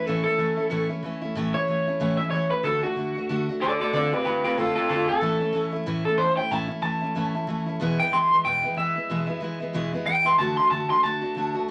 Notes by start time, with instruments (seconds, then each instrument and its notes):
0.06 steel-string acoustic guitar A2 E3 A3 C#4 E4, clean electric guitar A4
0.24 steel-string acoustic guitar C#4 E4, clean electric guitar A4
0.29 steel-string acoustic guitar A3
0.38 steel-string acoustic guitar E3 A3 C#4 E4
0.57 steel-string acoustic guitar A3 C#4 E4
0.70 steel-string acoustic guitar A2 E3 A3 C#4 E4
0.89 steel-string acoustic guitar A3 C#4 E4
1.03 steel-string acoustic guitar E3 A3 C#4 E4
1.22 steel-string acoustic guitar A3 C#4 E4
1.35 steel-string acoustic guitar A2 E3 A3 C#4 E4
1.54 steel-string acoustic guitar A3 C#4 E4, clean electric guitar C#5
1.68 steel-string acoustic guitar E3 A3 C#4
1.72 steel-string acoustic guitar E4
1.87 steel-string acoustic guitar A3 C#4 E4
2.00 steel-string acoustic guitar A2 E3 A3 C#4 E4
2.17 steel-string acoustic guitar C#4 E4, clean electric guitar E5
2.22 steel-string acoustic guitar A3
2.30 steel-string acoustic guitar E3 A3, clean electric guitar C#5
2.34 steel-string acoustic guitar C#4 E4
2.49 steel-string acoustic guitar A3 C#4 E4, clean electric guitar B4
2.63 steel-string acoustic guitar D3 A3 D4 F#4, clean electric guitar A4
2.82 steel-string acoustic guitar A3 D4 F#4, clean electric guitar F#4
2.96 steel-string acoustic guitar D3 A3 D4 F#4
3.15 steel-string acoustic guitar A3 D4 F#4
3.29 steel-string acoustic guitar D3 A3 D4 F#4
3.49 steel-string acoustic guitar A3 D4 F#4
3.61 steel-string acoustic guitar D3 A3 D4 F#4, clean electric guitar A4 D5
3.79 steel-string acoustic guitar A3 D4 F#4, clean electric guitar A4 D5
3.93 steel-string acoustic guitar D3 A3 C4 F4, clean electric guitar A4 D5
4.12 steel-string acoustic guitar A3 C4 F4, clean electric guitar G4 B4
4.25 steel-string acoustic guitar D3 A3 C4 F4, clean electric guitar G4 B4
4.44 steel-string acoustic guitar A3 C4 F4, clean electric guitar G4 B4
4.57 steel-string acoustic guitar D3 A3 C4 F4, clean electric guitar F4 A4
4.75 steel-string acoustic guitar C4 F4, clean electric guitar F4 A4
4.80 steel-string acoustic guitar A3
4.89 steel-string acoustic guitar D3 A3 C4 F4, clean electric guitar F4 A4
5.08 steel-string acoustic guitar A3 C4 F4, clean electric guitar A4
5.21 steel-string acoustic guitar A2 E3 A3 C#4 E4
5.39 steel-string acoustic guitar A3 C#4 E4
5.53 steel-string acoustic guitar E3 A3 C#4 E4
5.72 steel-string acoustic guitar A3 C#4 E4
5.86 steel-string acoustic guitar A2 E3 A3 C#4 E4
6.05 steel-string acoustic guitar A3 C#4 E4, clean electric guitar A4
6.18 steel-string acoustic guitar E3 A3 C#4 E4, clean electric guitar C5
6.37 steel-string acoustic guitar A3 C#4 E4, clean electric guitar G5
6.51 steel-string acoustic guitar A2 E3 A3 C#4 E4, clean electric guitar A5
6.68 steel-string acoustic guitar A3 C#4 E4
6.82 steel-string acoustic guitar E3 A3 C#4 E4, clean electric guitar A5
7.01 steel-string acoustic guitar A3 C#4 E4
7.15 steel-string acoustic guitar A2 E3 A3 C#4 E4
7.35 steel-string acoustic guitar A3 C#4 E4
7.47 steel-string acoustic guitar E3 A3 C#4 E4
7.66 steel-string acoustic guitar A3 C#4 E4
7.80 steel-string acoustic guitar E2 B2 E3 G#3 B3 E4
7.99 steel-string acoustic guitar E3 G#3 B3 E4, clean electric guitar G5
8.11 steel-string acoustic guitar E3 G#3 B3 E4, clean electric guitar C6
8.31 steel-string acoustic guitar E3 G#3 B3 E4
8.44 steel-string acoustic guitar E2 B2 E3 G#3 B3 E4, clean electric guitar G5
8.63 steel-string acoustic guitar E3 G#3 B3 E4
8.76 steel-string acoustic guitar E3 G#3 B3 E4, clean electric guitar E5
8.95 steel-string acoustic guitar E3 G#3 B3 E4
9.09 steel-string acoustic guitar E2 B2 E3 G#3 B3 E4
9.27 steel-string acoustic guitar E3 G#3 B3 E4
9.40 steel-string acoustic guitar E3 G#3 B3 E4
9.60 steel-string acoustic guitar E3 G#3 B3 E4
9.73 steel-string acoustic guitar E2 B2 E3 G#3 B3 E4
9.93 steel-string acoustic guitar E3 G#3 B3 E4
10.06 steel-string acoustic guitar E3 G#3 B3 E4, clean electric guitar G5
10.24 steel-string acoustic guitar E3 G#3 B3 E4, clean electric guitar C6
10.38 steel-string acoustic guitar D3 A3 D4 F#4, clean electric guitar A5
10.57 steel-string acoustic guitar A3 D4 F#4, clean electric guitar C6
10.70 steel-string acoustic guitar D3 A3 D4 F#4, clean electric guitar A5
10.89 steel-string acoustic guitar A3 D4 F#4, clean electric guitar C6
11.03 steel-string acoustic guitar D3 A3 D4 F#4, clean electric guitar A5
11.21 steel-string acoustic guitar A3 D4 F#4
11.35 steel-string acoustic guitar D3 A3 D4 F#4
11.55 steel-string acoustic guitar A3 D4 F#4